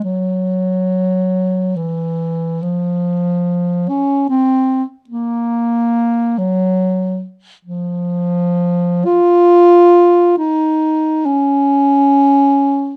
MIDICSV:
0, 0, Header, 1, 2, 480
1, 0, Start_track
1, 0, Tempo, 500000
1, 12448, End_track
2, 0, Start_track
2, 0, Title_t, "Bass clarinet"
2, 0, Program_c, 0, 71
2, 34, Note_on_c, 0, 54, 56
2, 1690, Note_on_c, 0, 52, 59
2, 1704, Note_off_c, 0, 54, 0
2, 2515, Note_on_c, 0, 53, 59
2, 2530, Note_off_c, 0, 52, 0
2, 3733, Note_on_c, 0, 61, 69
2, 3748, Note_off_c, 0, 53, 0
2, 4114, Note_off_c, 0, 61, 0
2, 4120, Note_on_c, 0, 60, 72
2, 4642, Note_off_c, 0, 60, 0
2, 4891, Note_on_c, 0, 58, 62
2, 6123, Note_on_c, 0, 54, 62
2, 6138, Note_off_c, 0, 58, 0
2, 6944, Note_off_c, 0, 54, 0
2, 7345, Note_on_c, 0, 53, 64
2, 8688, Note_on_c, 0, 65, 81
2, 8702, Note_off_c, 0, 53, 0
2, 9953, Note_off_c, 0, 65, 0
2, 9957, Note_on_c, 0, 63, 68
2, 10806, Note_on_c, 0, 61, 75
2, 10820, Note_off_c, 0, 63, 0
2, 12448, Note_off_c, 0, 61, 0
2, 12448, End_track
0, 0, End_of_file